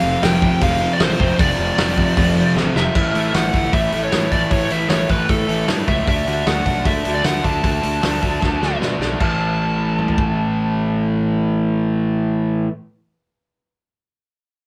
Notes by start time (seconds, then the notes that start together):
Already playing: F2 C3 F3 A3 C4 F5
0.03 F1
0.23 F1 F2 C3 F3 G5, snare, open hi-hat
0.42 F2 C3 F3, kick
0.61 F1 F2 C3 F3 A3 F5, kick, open hi-hat
0.65 C4
0.80 F2 C3 F3 A3 C4
0.93 D5
0.99 A1 F2 C3 F3 C5, snare, open hi-hat
1.12 C5
1.19 F1 F2 C3 F3 A3 C4, kick
1.38 F1 F2 C3 F3 D5, kick, open hi-hat
1.59 F1
1.77 F1 F2 C3 F3, snare, open hi-hat
1.97 F2 C3 F3, kick
2.16 F1 F2 C3 F3 A3 C4, kick, open hi-hat
2.35 C3 F3 A3 C4
2.39 F2
2.56 A1 F2 C3 F3, snare
2.76 F1 F2 C3 F3 E5, snare
2.95 A1 A2 E3 A3 E5, kick, crash
3.15 A1 A2 E3 A3, open hi-hat
3.34 A1 A2 E3 A3 F#5, snare, open hi-hat
3.54 G1 A2 E3 A3, kick, open hi-hat
3.73 A1 A2 E3 A3 E5, kick, open hi-hat
3.92 A1 A2 E3 A3, open hi-hat
4.04 C#5
4.12 A1 A2 E3 A3, snare, open hi-hat
4.32 A1 A2 E3 A3 D5, kick, open hi-hat
4.51 A1 A2 E3 A3 C#5, kick, open hi-hat
4.70 A1 A2 E3 A3 E5, open hi-hat
4.89 A1 A2 E3 A3 C#5, snare, open hi-hat
5.09 A1 A2 E3 A3 B4, kick, open hi-hat
5.27 A1 A2 E3 A3 A4, kick, open hi-hat
5.48 A1 A2 E3 A3, open hi-hat
5.66 G2 A2 E3 A3, snare, open hi-hat
5.87 C#2 A2 E3 A3 E5, kick, open hi-hat
6.06 D2 D3 A3 D4 E5, kick, open hi-hat
6.26 D2 D3 A3 D4, open hi-hat
6.46 D2 D3 A3 D4 F#5, snare, open hi-hat
6.65 B1 D3 A3 D4, kick, open hi-hat
6.84 D2 D3 A3 D4 E5, kick, open hi-hat
7.04 D2 D3 A3 D4, open hi-hat
7.15 D5
7.23 D2 D3 A3 D4 F#5, snare, open hi-hat
7.42 D2 D3 A3 D4 A5, kick, open hi-hat
7.62 D2 D3 A3 D4, kick, open hi-hat
7.81 D2 D3 A3 D4, open hi-hat
8.01 D2 D3 A3 D4, snare, open hi-hat
8.21 D2 D3 A3 D4, kick, open hi-hat
8.41 D2 D3 A3 D4, kick, snare
8.60 D2 D3 A3 D4, snare
8.79 B2 D3 A3 D4, snare
8.99 B1 D3 A3 D4, snare
9.17 A1 A2 E3 A5, kick, crash
9.22 A3
9.99 mid tom
10.08 floor tom
10.18 kick